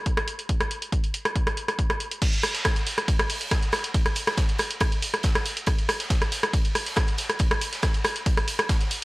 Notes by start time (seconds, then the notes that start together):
0.06 kick, closed hi-hat
0.17 cross-stick, closed hi-hat
0.28 closed hi-hat
0.39 closed hi-hat
0.49 kick, closed hi-hat
0.60 cross-stick, closed hi-hat
0.71 closed hi-hat
0.82 closed hi-hat
0.92 kick, closed hi-hat
1.04 closed hi-hat
1.14 closed hi-hat
1.25 cross-stick, closed hi-hat
1.36 kick, closed hi-hat
1.47 cross-stick, closed hi-hat
1.57 closed hi-hat
1.68 cross-stick, closed hi-hat
1.79 kick, closed hi-hat
1.90 cross-stick, closed hi-hat
2.00 closed hi-hat
2.12 closed hi-hat
2.22 kick, closed hi-hat, ride, crash
2.33 closed hi-hat
2.43 cross-stick, closed hi-hat, open hi-hat
2.54 snare, closed hi-hat
2.65 kick, cross-stick, snare, closed hi-hat, ride
2.76 closed hi-hat
2.87 closed hi-hat, open hi-hat
2.98 cross-stick, closed hi-hat
3.08 kick, closed hi-hat, ride
3.19 cross-stick, closed hi-hat
3.30 open hi-hat
3.41 closed hi-hat
3.51 kick, cross-stick, snare, closed hi-hat, ride
3.63 closed hi-hat
3.72 cross-stick, snare, closed hi-hat, open hi-hat
3.84 closed hi-hat
3.94 kick, closed hi-hat, ride
4.06 cross-stick, closed hi-hat
4.16 closed hi-hat, open hi-hat
4.27 cross-stick, snare, closed hi-hat
4.38 kick, snare, closed hi-hat, ride
4.49 closed hi-hat
4.58 cross-stick, closed hi-hat, open hi-hat
4.71 closed hi-hat
4.80 kick, cross-stick, closed hi-hat, ride
4.92 closed hi-hat
5.02 closed hi-hat, open hi-hat
5.14 cross-stick, closed hi-hat
5.23 kick, snare, closed hi-hat, ride
5.35 cross-stick, snare, closed hi-hat
5.45 closed hi-hat, open hi-hat
5.57 closed hi-hat
5.67 kick, cross-stick, closed hi-hat, ride
5.79 closed hi-hat
5.89 cross-stick, closed hi-hat, open hi-hat
6.00 snare, closed hi-hat
6.10 kick, snare, closed hi-hat, ride
6.22 cross-stick, closed hi-hat
6.32 snare, closed hi-hat, open hi-hat
6.43 cross-stick, closed hi-hat
6.53 kick, closed hi-hat, ride
6.65 closed hi-hat
6.75 cross-stick, open hi-hat
6.86 snare, closed hi-hat
6.96 kick, cross-stick, snare, closed hi-hat, ride
7.08 closed hi-hat
7.18 snare, closed hi-hat, open hi-hat
7.30 cross-stick, closed hi-hat
7.39 kick, closed hi-hat, ride
7.51 cross-stick, closed hi-hat
7.61 closed hi-hat, open hi-hat
7.73 snare, closed hi-hat
7.83 kick, cross-stick, snare, closed hi-hat, ride
7.94 closed hi-hat
8.04 cross-stick, closed hi-hat, open hi-hat
8.16 closed hi-hat
8.26 kick, closed hi-hat, ride
8.37 cross-stick, closed hi-hat
8.48 closed hi-hat, open hi-hat
8.59 cross-stick, closed hi-hat
8.69 kick, snare, closed hi-hat, ride
8.80 snare, closed hi-hat
8.91 closed hi-hat, open hi-hat